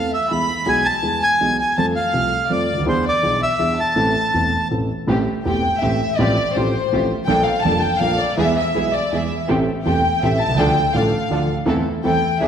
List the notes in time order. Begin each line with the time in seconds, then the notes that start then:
Already playing: F5
0.12 E5
0.31 E2 E3 G#3 B3 G#4 B5
0.66 B1 B2 E3 G#3 B3 G#4 G#5
0.85 A5
1.02 E2 E3 G#3 B3 G#4
1.22 G#5
1.41 B1 B2 E3 G#3 B3 G#4
1.59 G#5
1.78 F2 F3 A3 C4 A4 A5
1.96 F5
2.13 C2 C3 F3 A3 C4 A4
2.50 F2 F3 A3 C4 A4 D5
2.73 C#2
2.78 D2
2.82 D#2 E2 E3
2.87 B3 D4 G#4 C5
3.07 D5
3.23 B1 B2 E3 B3 D4 G#4
3.43 E5
3.59 E2 E3 B3 D4 G#4
3.80 A5
3.96 A1 A2 E3 A3 C4 A4
4.34 E1 E2 E3 A3 C4 A4
4.71 A1 A2 E3 A3 C4 A4
5.07 A1 A2 E3 A3 C4 G4
5.45 E1 E2 E3 A3 C4 G4 G5
5.82 A1 A2 E3 A3 C4 G4 E5
6.17 A1 A2 F3 A3 C4 F4 G4 D5
6.54 A1 A2 F3 A3 C4 F4 G4 C5
6.92 A1 A2 F3 A3 C4 F4 G4
7.26 A#1 A#2 F3 A#3 D4 A4 G5
7.44 F5
7.62 F1 F2 F3 A#3 D4 A4 A5
7.80 G5
7.99 A#1 A#2 F3 A#3 D4 A4 F5
8.18 D5
8.37 E2 E3 G#3 B3 E4 G#4 E5
8.57 E5
8.75 B1 B2 E3 G#3 B3 E4 G#4
8.94 D5
9.12 E2 E3 G#3 B3 E4 G#4 E5
9.48 A1 A2 E3 A3 C4 G4 A4
9.85 E1 E2 E3 A3 C4 G4 A4 G5
10.22 A1 A2 E3 A3 C4 G4 A4 E5
10.40 A5
10.46 B1 C2
10.54 C#2 D3 F3 D4
10.58 D2 A3 D4 F4 A4 G5
10.94 A1 A2 F3 A3 D4 F4 A4 F5
11.31 D2 D3 F3 A3 D4 F4 A4
11.66 E2 E3 A3 C4 E4 A4
12.04 E2 E3 A3 C4 E4 A4 G5
12.40 E2 E3 B3 D4 E4 G#4 E5